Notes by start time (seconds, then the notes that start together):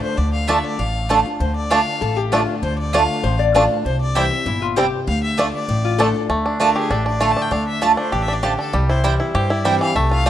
Already playing: A2 D3 A3 D4 F4
0.02 C5
0.17 D2 D3 D5
0.33 F5
0.48 D3 A3 D4 F4 D5 E5 A5
0.64 D5
0.79 A1 A2 F5
1.09 D3 A3 D4 F4 D5 A5
1.26 D4 F4
1.40 D2 D3 C5
1.56 D5
1.70 D3 A3 D4 F4 D5 F5 A5
2.01 A1 A2 A4
2.17 G4
2.32 D3 A3 D4 F4 D5 A5
2.62 D2 D3 C5
2.79 D5
2.93 D3 A3 D4 F4 D5 F5 A5
3.24 A1 A2 C5
3.39 D5
3.54 D3 A3 D4 F4 D5 F5 A5
3.85 C2 C3 C5
4.01 D5
4.15 E3 G3 C4 E4 C5 E5 G5
4.31 C4 E4
4.46 G1 A#2 E4
4.62 F4
4.76 C3 G3 C4 E4 G4 C5 G5
5.07 D2 D3 F5
5.23 E5
5.37 D3 A3 D4 F4 D5 A5
5.53 D5
5.68 A1 A2
5.85 F4
5.98 D3 A3 D4 F4 A4 D5 A5
6.14 D4 F4
6.29 D2 A3
6.46 D4
6.60 D3 A3 D4 F4 A#4 D5 A5
6.76 G4 G#4
6.90 A1 A2 D4 A4
7.06 D4 D5
7.20 D3 A3 D4 F4 D5 F5 A5
7.31 A5
7.37 D4
7.42 G5
7.51 D2 D3 D4 F5
7.67 E5
7.81 D3 A3 D4 F4 D5 A5
7.97 D4 C5
8.12 A1 E3 G4 D5
8.22 E5
8.28 D4
8.33 D5
8.43 D3 A3 F4 G4 C5 D5 A5
8.59 D4 A4
8.73 C2 C3 G3 G4
8.89 E4 C5
9.04 E3 G3 C4 E4 C5 G5
9.20 E4
9.34 G2 G4 C5
9.50 E4 D5
9.65 E3 G3 C4 E4 C5 E5 G5
9.81 E3 F5
9.95 C2 C3 A3 E5
10.11 F4 F5
10.26 F3 A3 C4 F4 C5 D5